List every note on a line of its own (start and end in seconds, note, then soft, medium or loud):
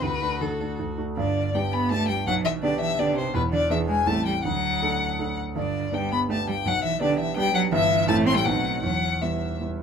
0.02 0.21 D2 medium
0.02 0.21 D3 soft
0.02 0.95 F#4 medium
0.02 0.42 B4 medium
0.22 0.39 A3 soft
0.22 0.39 D4 soft
0.22 0.39 F#4 soft
0.41 0.59 D2 soft
0.41 0.59 D3 medium
0.41 0.79 A4 medium
0.60 0.77 A3 soft
0.60 0.77 D4 soft
0.60 0.77 F#4 soft
0.80 0.98 D2 soft
0.80 0.98 D3 soft
0.98 1.15 A3 soft
0.98 1.15 D4 soft
0.98 1.15 F#4 soft
1.16 2.24 G1 soft
1.16 2.23 G2 medium
1.16 1.51 D3 medium
1.16 1.56 D5 medium
1.53 1.61 G3 medium
1.53 1.87 B3 soft
1.53 1.87 D4 soft
1.53 1.87 G4 medium
1.53 1.74 G5 medium
1.72 1.92 B3 medium
1.72 1.91 B5 medium
1.90 2.10 A3 medium
1.90 2.23 B3 soft
1.90 2.23 D4 soft
1.90 2.24 G4 soft
1.90 2.08 A5 loud
2.08 2.26 G3 medium
2.08 2.26 G5 medium
2.27 3.31 B1 medium
2.27 3.31 B2 medium
2.27 2.46 F#3 medium
2.27 2.34 F#5 loud
2.44 2.62 E3 medium
2.44 2.52 E5 medium
2.62 2.78 D3 medium
2.62 2.95 B3 medium
2.62 2.95 D4 medium
2.62 2.95 G4 medium
2.62 2.80 D5 medium
2.79 2.97 E3 medium
2.79 3.01 E5 loud
2.98 3.17 D3 medium
2.98 3.31 B3 medium
2.98 3.31 D4 medium
2.98 3.31 G4 medium
2.98 3.17 D5 medium
3.15 3.33 C3 medium
3.15 3.34 C5 medium
3.33 4.05 E1 medium
3.33 4.05 E2 medium
3.33 3.41 B2 medium
3.33 3.42 B4 loud
3.52 3.59 D3 medium
3.52 3.70 D5 medium
3.70 3.88 E3 medium
3.70 4.03 B3 medium
3.70 4.03 D4 medium
3.70 4.03 G#4 medium
3.70 3.78 E5 medium
3.88 3.96 G#3 medium
3.88 4.09 G#5 medium
4.07 4.43 A1 medium
4.07 4.43 A2 medium
4.07 4.41 G3 soft
4.07 4.25 A3 medium
4.07 4.41 C4 soft
4.07 4.41 A4 soft
4.07 4.25 A5 loud
4.25 4.33 G3 medium
4.25 4.43 G5 medium
4.44 5.54 D2 medium
4.44 5.54 D3 medium
4.44 5.36 F#3 medium
4.44 5.35 F#5 loud
4.82 5.15 A3 soft
4.82 5.16 D4 soft
4.82 5.16 A4 medium
5.19 5.53 A3 soft
5.19 5.53 D4 soft
5.19 5.53 A4 soft
5.56 6.62 G1 medium
5.56 6.62 G2 medium
5.56 5.90 D3 medium
5.56 5.96 D5 medium
5.93 6.13 G3 medium
5.93 6.26 B3 medium
5.93 6.26 D4 soft
5.93 6.26 G4 medium
5.93 6.11 G5 medium
6.12 6.28 B3 medium
6.12 6.19 B5 medium
6.29 6.36 A3 medium
6.29 6.62 B3 soft
6.29 6.62 D4 soft
6.29 6.62 G4 soft
6.29 6.48 A5 medium
6.47 6.55 G3 medium
6.47 6.69 G5 medium
6.65 7.69 B1 medium
6.65 7.69 B2 medium
6.65 6.73 F#3 medium
6.65 6.83 F#5 loud
6.83 7.00 E3 medium
6.83 7.01 E5 loud
7.00 7.20 D3 medium
7.00 7.33 B3 medium
7.00 7.33 D4 medium
7.00 7.33 G4 medium
7.00 7.19 D5 medium
7.18 7.36 E3 medium
7.18 7.36 E5 medium
7.36 7.53 G3 loud
7.36 7.69 B3 medium
7.36 7.69 D4 medium
7.36 7.69 G4 medium
7.36 7.54 G5 loud
7.54 7.72 F#3 loud
7.54 7.62 F#5 loud
7.72 8.07 G1 medium
7.72 8.07 G2 medium
7.72 8.10 E3 loud
7.72 8.05 B3 medium
7.72 8.05 E4 medium
7.72 8.08 E5 loud
8.08 8.44 A1 medium
8.08 8.44 A2 medium
8.08 8.42 A3 medium
8.08 8.28 A3 loud
8.08 8.42 C4 medium
8.08 8.42 E4 medium
8.08 8.16 A5 loud
8.27 8.37 C4 medium
8.27 8.36 C6 loud
8.35 8.47 G3 medium
8.35 8.46 G5 medium
8.45 8.82 B1 medium
8.45 8.82 B2 medium
8.45 8.83 F#3 medium
8.45 8.79 A3 soft
8.45 8.80 C4 medium
8.45 8.80 D#4 medium
8.45 8.82 F#5 medium
8.83 9.83 E1 medium
8.83 9.83 E2 medium
8.83 9.21 F#3 medium
8.83 9.23 F#5 medium
9.21 9.59 E3 soft
9.21 9.56 G3 soft
9.21 9.56 B3 soft
9.21 9.57 E4 soft
9.21 9.60 E5 medium
9.60 9.83 G3 soft
9.60 9.83 B3 soft
9.60 9.83 E4 soft